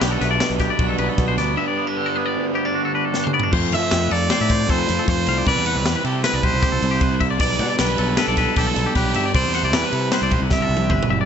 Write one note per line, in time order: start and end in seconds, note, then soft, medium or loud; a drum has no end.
0.00 0.19 B1 medium
0.00 1.56 B2 medium
0.00 1.96 D3 medium
0.00 1.57 G3 medium
0.00 0.22 A3 medium
0.00 0.60 B3 medium
0.00 1.57 B3 medium
0.00 1.58 D4 loud
0.00 0.78 F#4 medium
0.00 0.11 G4 medium
0.00 snare loud
0.00 ride loud
0.11 0.21 A4 medium
0.21 0.39 B1 medium
0.21 1.60 A3 medium
0.21 0.30 B4 medium
0.21 snare soft
0.21 ride medium
0.31 0.50 D5 medium
0.40 1.16 B2 medium
0.40 snare loud
0.40 ride medium
0.50 0.68 B1 medium
0.60 0.98 B3 medium
0.60 0.70 G4 medium
0.60 kick medium
0.60 snare soft
0.60 ride medium
0.70 0.89 D5 medium
0.79 0.97 B1 medium
0.79 1.55 F#4 medium
0.79 kick loud
0.79 ride loud
0.89 0.98 A4 medium
0.98 1.08 B1 medium
0.98 1.37 B3 medium
0.98 1.09 B4 medium
0.98 ride medium
1.09 1.27 A4 medium
1.17 1.36 B1 medium
1.17 1.55 B2 medium
1.17 kick loud
1.17 snare soft
1.17 ride medium
1.28 1.38 C5 medium
1.37 1.55 D2 loud
1.37 1.76 B3 medium
1.37 1.57 D5 medium
1.37 snare soft
1.37 ride medium
1.56 3.51 G2 medium
1.56 2.36 G2 medium
1.56 3.51 D3 medium
1.56 3.52 G3 medium
1.56 3.52 B3 loud
1.56 3.52 D4 loud
1.56 1.67 E5 medium
1.68 1.87 D5 medium
1.77 1.87 B3 medium
1.87 2.55 D4 medium
1.87 1.97 B4 medium
1.97 3.53 D3 medium
1.97 2.06 G4 medium
2.06 2.16 A4 medium
2.16 2.54 B3 medium
2.16 2.26 B4 medium
2.26 2.45 D5 medium
2.36 3.14 D2 medium
2.55 2.65 B3 medium
2.55 2.65 G4 medium
2.65 2.94 D4 medium
2.65 2.85 D5 medium
2.75 3.50 F#4 medium
2.85 2.94 A4 medium
2.95 3.33 D4 medium
2.95 3.05 B4 medium
3.05 3.24 A4 medium
3.13 3.52 G2 medium
3.13 snare medium
3.24 3.33 C5 medium
3.24 mid tom medium
3.33 3.43 B3 medium
3.33 3.53 D5 medium
3.40 3.53 D4 medium
3.40 floor tom loud
3.52 3.74 F2 loud
3.52 5.45 F3 medium
3.52 5.46 A3 loud
3.52 5.46 C4 medium
3.52 5.47 F4 loud
3.52 3.73 C5 loud
3.52 kick loud
3.52 crash loud
3.72 3.81 F3 loud
3.72 3.82 E5 medium
3.72 4.14 E5 loud
3.72 ride medium
3.82 4.01 C5 medium
3.91 4.09 F2 loud
3.91 snare loud
3.91 ride loud
4.01 4.11 B4 medium
4.11 4.29 F2 medium
4.11 4.31 A4 medium
4.11 4.72 D5 loud
4.11 ride medium
4.30 4.40 C5 medium
4.30 snare loud
4.30 ride loud
4.41 4.69 A2 medium
4.41 4.50 E5 medium
4.50 4.70 C5 medium
4.50 kick medium
4.50 ride medium
4.69 4.87 F2 medium
4.69 4.79 A4 loud
4.69 5.08 C5 loud
4.69 kick loud
4.69 snare soft
4.69 ride loud
4.79 4.98 B4 medium
4.89 4.98 F2 medium
4.89 snare soft
4.89 ride medium
4.99 5.09 A4 medium
5.08 5.25 F2 medium
5.08 5.45 C5 loud
5.08 5.28 C5 medium
5.08 kick loud
5.08 ride loud
5.27 5.45 C2 loud
5.27 5.38 F5 medium
5.27 ride medium
5.38 5.46 D5 medium
5.46 5.56 C2 loud
5.46 7.38 C3 loud
5.46 7.40 G3 loud
5.46 7.40 C4 loud
5.46 7.41 E4 medium
5.46 6.02 B4 loud
5.46 5.66 D5 loud
5.46 kick loud
5.46 ride loud
5.56 5.74 E2 medium
5.66 5.77 F#5 medium
5.66 ride medium
5.75 5.85 C2 loud
5.75 5.95 D5 medium
5.85 5.94 E2 loud
5.85 snare loud
5.85 ride loud
5.96 6.05 B4 medium
6.04 6.22 C3 loud
6.04 6.23 G4 medium
6.04 6.24 A4 medium
6.04 ride medium
6.24 6.34 B4 medium
6.24 6.46 B4 loud
6.24 snare loud
6.24 ride loud
6.33 6.43 C2 medium
6.33 6.43 D5 medium
6.43 6.52 B1 medium
6.43 6.63 B4 medium
6.43 7.22 C5 loud
6.43 kick medium
6.43 ride medium
6.53 6.62 C2 medium
6.62 6.72 G4 loud
6.62 kick loud
6.62 snare soft
6.62 ride loud
6.72 6.81 C2 loud
6.72 6.91 A4 medium
6.82 7.40 C2 loud
6.82 ride medium
6.91 7.01 G4 medium
7.01 7.21 B4 medium
7.01 kick loud
7.01 ride loud
7.20 7.30 E5 medium
7.20 kick medium
7.20 ride medium
7.30 7.39 D5 medium
7.38 7.61 B1 loud
7.38 9.33 B2 loud
7.38 9.33 G3 loud
7.38 9.34 B3 loud
7.38 9.34 D4 loud
7.38 7.59 D5 loud
7.38 7.77 D5 loud
7.38 kick loud
7.38 ride loud
7.59 7.68 B2 loud
7.59 7.69 F#5 medium
7.59 ride medium
7.70 7.89 D5 medium
7.79 7.97 B1 loud
7.79 8.21 B4 loud
7.79 snare loud
7.79 ride loud
7.89 7.99 B4 medium
7.98 8.17 B1 loud
7.98 8.18 A4 medium
7.98 ride medium
8.17 8.57 A4 loud
8.17 8.28 B4 medium
8.17 snare loud
8.17 ride loud
8.28 8.45 B1 medium
8.28 8.38 D5 medium
8.37 8.57 B4 medium
8.37 kick medium
8.37 snare soft
8.37 ride medium
8.56 8.75 B1 medium
8.56 8.67 G4 loud
8.56 8.93 A4 loud
8.56 kick loud
8.56 ride loud
8.67 8.86 A4 medium
8.76 8.85 B1 medium
8.76 ride medium
8.86 8.96 G4 medium
8.95 9.13 B1 loud
8.95 9.32 G4 loud
8.95 9.15 B4 medium
8.95 kick loud
8.95 snare soft
8.95 ride loud
9.14 9.33 G2 medium
9.14 9.26 E5 medium
9.14 ride medium
9.26 9.34 D5 medium
9.34 9.43 C2 loud
9.34 11.25 C3 medium
9.34 11.25 G3 loud
9.34 11.25 C4 loud
9.34 11.25 E4 loud
9.34 9.76 C5 loud
9.34 9.54 D5 loud
9.34 kick loud
9.34 ride loud
9.43 9.62 E2 medium
9.54 9.64 F#5 medium
9.54 snare soft
9.54 ride medium
9.63 9.74 C2 loud
9.63 9.84 D5 medium
9.73 9.82 E2 loud
9.73 10.14 B4 loud
9.73 snare loud
9.73 ride loud
9.84 9.94 B4 medium
9.92 10.10 C3 loud
9.92 10.13 A4 medium
9.92 ride medium
10.12 10.22 B4 medium
10.12 10.41 C5 loud
10.12 snare loud
10.12 ride loud
10.22 10.32 C2 medium
10.22 10.33 D5 medium
10.31 10.41 B1 medium
10.31 10.52 B4 medium
10.31 kick medium
10.31 ride medium
10.42 10.50 C2 medium
10.50 10.62 G4 medium
10.50 11.06 E5 loud
10.50 kick loud
10.50 snare medium
10.60 10.68 C2 loud
10.60 10.81 A4 medium
10.69 10.89 C2 loud
10.77 high tom medium
10.81 10.91 G4 medium
10.90 11.08 G1 medium
10.90 11.10 B4 medium
10.90 kick loud
10.90 mid tom medium
11.03 mid tom loud
11.09 11.25 F#1 medium
11.09 11.20 E5 medium
11.21 11.25 D5 medium